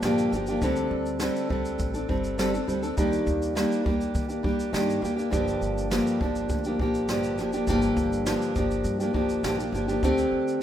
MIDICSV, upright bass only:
0, 0, Header, 1, 2, 480
1, 0, Start_track
1, 0, Key_signature, -2, "minor"
1, 0, Tempo, 587659
1, 506, Time_signature, 4, 2, 24, 8
1, 8682, End_track
2, 0, Start_track
2, 0, Title_t, "Upright bass"
2, 0, Program_c, 0, 32
2, 18, Note_on_c, 0, 34, 93
2, 218, Note_off_c, 0, 34, 0
2, 263, Note_on_c, 0, 31, 98
2, 461, Note_off_c, 0, 31, 0
2, 505, Note_on_c, 0, 38, 112
2, 702, Note_off_c, 0, 38, 0
2, 742, Note_on_c, 0, 38, 98
2, 1039, Note_off_c, 0, 38, 0
2, 1227, Note_on_c, 0, 38, 90
2, 1424, Note_off_c, 0, 38, 0
2, 1467, Note_on_c, 0, 33, 95
2, 1664, Note_off_c, 0, 33, 0
2, 1707, Note_on_c, 0, 31, 84
2, 2101, Note_off_c, 0, 31, 0
2, 2189, Note_on_c, 0, 38, 91
2, 2385, Note_off_c, 0, 38, 0
2, 2430, Note_on_c, 0, 39, 103
2, 2626, Note_off_c, 0, 39, 0
2, 2672, Note_on_c, 0, 39, 92
2, 2966, Note_off_c, 0, 39, 0
2, 3151, Note_on_c, 0, 39, 97
2, 3347, Note_off_c, 0, 39, 0
2, 3390, Note_on_c, 0, 51, 94
2, 3586, Note_off_c, 0, 51, 0
2, 3630, Note_on_c, 0, 39, 80
2, 3826, Note_off_c, 0, 39, 0
2, 3861, Note_on_c, 0, 43, 92
2, 4061, Note_off_c, 0, 43, 0
2, 4100, Note_on_c, 0, 39, 98
2, 4301, Note_off_c, 0, 39, 0
2, 4350, Note_on_c, 0, 31, 98
2, 4546, Note_off_c, 0, 31, 0
2, 4584, Note_on_c, 0, 31, 92
2, 4881, Note_off_c, 0, 31, 0
2, 5071, Note_on_c, 0, 31, 94
2, 5267, Note_off_c, 0, 31, 0
2, 5306, Note_on_c, 0, 38, 102
2, 5504, Note_off_c, 0, 38, 0
2, 5548, Note_on_c, 0, 34, 85
2, 6030, Note_off_c, 0, 34, 0
2, 6030, Note_on_c, 0, 29, 100
2, 6226, Note_off_c, 0, 29, 0
2, 6266, Note_on_c, 0, 31, 107
2, 6464, Note_off_c, 0, 31, 0
2, 6508, Note_on_c, 0, 31, 98
2, 6803, Note_off_c, 0, 31, 0
2, 6993, Note_on_c, 0, 31, 91
2, 7188, Note_off_c, 0, 31, 0
2, 7223, Note_on_c, 0, 43, 104
2, 7422, Note_off_c, 0, 43, 0
2, 7471, Note_on_c, 0, 31, 85
2, 7666, Note_off_c, 0, 31, 0
2, 7704, Note_on_c, 0, 34, 92
2, 7902, Note_off_c, 0, 34, 0
2, 7942, Note_on_c, 0, 31, 102
2, 8141, Note_off_c, 0, 31, 0
2, 8190, Note_on_c, 0, 38, 101
2, 8386, Note_off_c, 0, 38, 0
2, 8428, Note_on_c, 0, 38, 82
2, 8682, Note_off_c, 0, 38, 0
2, 8682, End_track
0, 0, End_of_file